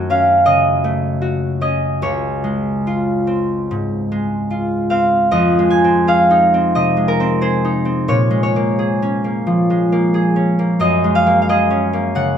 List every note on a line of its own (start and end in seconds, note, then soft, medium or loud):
0.00 2.05 F#2 medium
0.00 0.83 A3 soft
0.00 1.20 F#4 soft
0.00 0.44 D#5 medium
0.00 2.05 F#5 medium
0.10 1.60 C#4 soft
0.10 0.73 F5 medium
0.46 2.05 C#3 soft
0.46 1.60 D#5 medium
0.84 2.05 A3 soft
1.22 2.05 F#4 soft
1.61 5.36 C#4 soft
1.61 2.05 D#5 medium
2.02 5.36 C#2 soft
2.02 5.36 C#5 soft
2.44 4.10 G#3 soft
2.87 4.49 F4 soft
3.27 4.90 C4 soft
3.71 5.36 G#2 soft
4.12 5.58 G#3 soft
4.50 8.40 F4 soft
4.90 5.83 C4 soft
4.90 6.07 F5 medium
5.31 8.12 F2 soft
5.31 6.74 D#5 medium
5.59 6.96 G#3 soft
5.70 9.60 G#5 medium
5.84 6.53 C4 soft
6.07 7.40 G#4 soft
6.07 9.98 F5 medium
6.31 7.63 D#4 soft
6.54 7.19 C4 soft
6.75 8.12 C3 soft
6.75 8.12 D#5 medium
6.97 8.29 G#3 soft
7.08 7.65 A#4 medium
7.20 7.84 C4 soft
7.41 8.78 G#4 soft
7.41 8.12 C5 medium
7.65 8.12 D#4 soft
7.85 8.11 C4 soft
8.08 10.83 A#2 soft
8.08 8.42 C#5 medium
8.31 9.69 G#3 soft
8.43 12.33 C#5 medium
8.56 9.23 A#3 soft
8.79 10.13 G#4 soft
9.02 10.35 C#4 soft
9.24 9.91 A#3 soft
9.47 10.83 F3 soft
9.70 11.03 G#3 soft
9.92 10.58 A#3 soft
10.14 11.48 G#4 soft
10.36 11.69 C#4 soft
10.59 11.25 A#3 soft
10.80 12.38 F#2 soft
10.80 11.48 D#5 medium
11.04 12.35 G#3 soft
11.15 11.41 F5 medium
11.26 11.92 A#3 soft
11.42 11.53 F5 soft
11.49 12.38 G#4 soft
11.49 12.38 D#5 medium
11.70 12.38 C#4 soft
11.93 12.38 A#3 soft
12.15 12.38 C#3 soft
12.15 12.38 F#5 medium